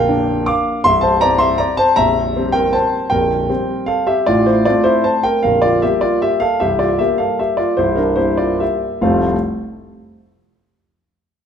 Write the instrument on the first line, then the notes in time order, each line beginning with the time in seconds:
grand piano
Already playing: A#0 A#1 A#4 F5 G5
0.08 A#3 D4
0.46 F5 D6
0.84 C1 C2 E5 C6
1.01 C5 A5
1.21 G3 C4 D5 A#5
1.38 E5 C6
1.58 D5 A#5
1.77 C5 A5
1.96 A#0 A#1 E5 A#5
2.36 G3 C4
2.52 A#4 G5
2.73 C5 A5
3.10 A#0 A#1 A#4 G5
3.49 G3 C4
3.86 A4 F5
4.07 G4 E5
4.26 A1 A2 F4 D5
4.46 E4 C5
4.65 A3 C4 F4 D5
4.84 E4 C5
5.04 C5 A5
5.23 A#4 G5
5.43 A#0 A#1 A#4 F5
5.62 F4 D5
5.82 G3 A#3 G4 E5
6.01 F4 D5
6.22 G4 E5
6.40 A4 F5
6.60 C1 C2 G4 E5
6.79 F4 D5
6.99 G3 A#3 G4 E5
7.18 A4 F5
7.39 G4 E5
7.57 F4 D5
7.77 C1 C2 E4 C5
7.96 D4 A#4
8.16 G3 A#3 E4 C5
8.38 F4 D5
8.60 G4 E5
9.01 F1 C2 F3 A3 C4 F4 F5